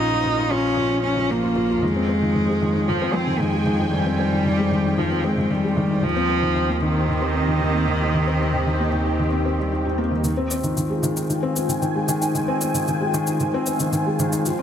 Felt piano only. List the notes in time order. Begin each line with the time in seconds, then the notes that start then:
Already playing: F3 F4
0.00 C#4
0.11 F3
0.24 F3
0.37 F4
0.51 F3
0.64 F4
0.77 F3
0.90 C#4
1.03 C#4
1.17 F3
1.30 F3
1.43 F4
1.56 F3
1.70 F4
1.82 D#3
1.96 C4
2.09 C4
2.22 D#3
2.35 D#3
2.49 G#3
2.62 D#3
2.76 D#4
2.89 D#3
3.02 C4
3.15 C4
3.28 D#3
3.40 D#3
3.53 G#3
3.66 D#3
3.80 D#4
3.93 D#3
4.06 C4
4.19 C4
4.32 D#3
4.46 D#3
4.59 G#3
4.72 D#3
4.85 D#4
4.98 D#3
5.11 C4
5.24 C4
5.38 D#3
5.51 D#3
5.64 G#3
5.77 D#3
5.90 D#4
6.03 D#3
6.16 C4
6.30 C4
6.43 D#3
6.56 D#3
6.69 A#3
6.82 D#3
6.96 D#4
7.09 D#3
7.22 C4
7.35 C4
7.48 D#3
7.61 D#3
7.75 A#3
7.88 D#3
8.01 D#4
8.14 D#3
8.27 C4
8.40 C4
8.53 D#3
8.67 D#3
8.80 A#3
8.93 D#3
9.06 D#4
9.19 D#3
9.32 C4
9.45 C4
9.59 G3
9.72 D#4
9.85 D#4
9.98 A#3
10.11 D#3
10.24 D#3
10.37 C4
10.51 C4
10.64 D#3
10.77 D#3
10.90 G#3
11.03 D#3
11.17 D#4
11.30 D#3
11.43 C4
11.56 C4
11.69 D#3
11.82 D#3
11.95 G#3
12.08 D#3
12.22 D#4
12.35 D#3
12.48 C4
12.62 C4
12.75 D#3
12.88 D#3
13.01 G#3
13.14 D#3
13.27 D#4
13.41 D#3
13.54 C4
13.67 C4
13.80 D#3
13.93 D#3
14.06 G#3
14.20 D#3
14.32 D#4
14.46 F3
14.59 C#4